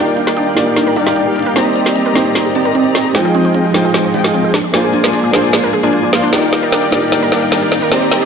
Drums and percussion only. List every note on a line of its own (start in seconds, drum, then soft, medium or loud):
0.17 closed hi-hat medium
0.27 snare soft
0.27 closed hi-hat medium
0.37 closed hi-hat medium
0.57 snare soft
0.57 closed hi-hat medium
0.76 snare soft
0.76 closed hi-hat medium
0.96 closed hi-hat medium
1.07 snare soft
1.07 closed hi-hat medium
1.16 closed hi-hat medium
1.36 closed hi-hat soft
1.39 closed hi-hat medium
1.43 closed hi-hat medium
1.56 snare soft
1.56 closed hi-hat medium
1.76 closed hi-hat medium
1.86 snare soft
1.86 closed hi-hat medium
1.96 closed hi-hat medium
2.15 snare medium
2.15 closed hi-hat medium
2.35 snare medium
2.35 closed hi-hat medium
2.55 closed hi-hat medium
2.65 closed hi-hat medium
2.75 closed hi-hat medium
2.95 snare medium
2.95 closed hi-hat medium
2.98 closed hi-hat medium
3.02 closed hi-hat medium
3.15 snare medium
3.15 closed hi-hat medium
3.35 closed hi-hat medium
3.45 closed hi-hat medium
3.55 closed hi-hat medium
3.74 snare medium
3.74 closed hi-hat medium
3.94 snare medium
3.94 closed hi-hat medium
4.14 closed hi-hat medium
4.24 snare medium
4.24 closed hi-hat medium
4.34 closed hi-hat medium
4.54 snare medium
4.54 closed hi-hat soft
4.57 closed hi-hat medium
4.60 closed hi-hat medium
4.74 snare medium
4.74 closed hi-hat medium
4.94 closed hi-hat medium
5.04 snare medium
5.04 closed hi-hat medium
5.13 closed hi-hat medium
5.33 snare medium
5.33 closed hi-hat medium
5.53 snare medium
5.53 closed hi-hat medium
5.73 closed hi-hat medium
5.83 closed hi-hat medium
5.93 closed hi-hat medium
6.13 snare medium
6.13 closed hi-hat soft
6.16 closed hi-hat medium
6.20 closed hi-hat medium
6.33 snare medium
6.33 closed hi-hat medium
6.53 snare medium
6.53 closed hi-hat medium
6.63 closed hi-hat medium
6.72 snare medium
6.72 closed hi-hat medium
6.92 snare medium
6.92 closed hi-hat medium
7.12 snare medium
7.12 closed hi-hat medium
7.32 snare medium
7.32 closed hi-hat medium
7.42 closed hi-hat medium
7.52 snare medium
7.52 closed hi-hat medium
7.72 snare medium
7.72 closed hi-hat medium
7.72 open hi-hat medium
7.78 closed hi-hat medium
7.92 snare medium
7.92 closed hi-hat medium
8.11 snare medium
8.11 closed hi-hat medium
8.22 closed hi-hat medium